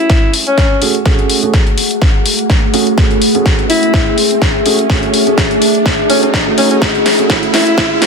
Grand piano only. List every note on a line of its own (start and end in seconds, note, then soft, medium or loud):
0.00 0.79 A3 medium
0.00 0.79 C#4 medium
0.00 0.79 F#4 medium
0.00 0.79 G#4 medium
0.82 0.93 A3 medium
0.82 0.93 C#4 medium
0.82 0.93 F#4 medium
0.82 0.93 G#4 medium
1.06 1.40 A3 medium
1.06 1.40 C#4 medium
1.06 1.40 F#4 medium
1.06 1.40 G#4 loud
1.43 1.59 A3 medium
1.43 1.59 C#4 medium
1.43 1.59 F#4 medium
1.43 1.59 G#4 medium
2.74 2.85 A3 medium
2.74 2.85 C#4 medium
2.74 2.85 F#4 medium
2.74 2.85 G#4 loud
2.98 3.16 A3 medium
2.98 3.16 C#4 medium
2.98 3.16 G#4 medium
3.35 4.63 A3 medium
3.35 4.63 C#4 medium
3.35 4.63 F#4 medium
3.35 4.63 G#4 medium
4.66 4.77 A3 medium
4.66 4.77 C#4 medium
4.66 4.77 F#4 medium
4.66 4.77 G#4 loud
4.90 5.24 A3 medium
4.90 5.24 C#4 medium
4.90 5.24 F#4 medium
4.90 5.24 G#4 loud
5.27 5.43 A3 medium
5.27 5.43 C#4 medium
5.27 5.43 F#4 medium
5.27 5.43 G#4 medium
6.10 6.21 A3 medium
6.10 6.21 C#4 medium
6.10 6.21 F#4 medium
6.10 6.21 G#4 medium
6.47 6.55 A3 medium
6.47 6.55 C#4 medium
6.47 6.55 F#4 medium
6.47 6.55 G#4 medium
6.58 6.79 A3 medium
6.58 6.79 C#4 medium
6.58 6.79 F#4 medium
6.58 6.79 G#4 medium
6.82 7.00 A3 medium
6.82 7.00 G#4 medium
7.19 8.06 A3 medium
7.19 8.06 C#4 medium
7.19 8.06 F#4 medium
7.19 8.06 G#4 medium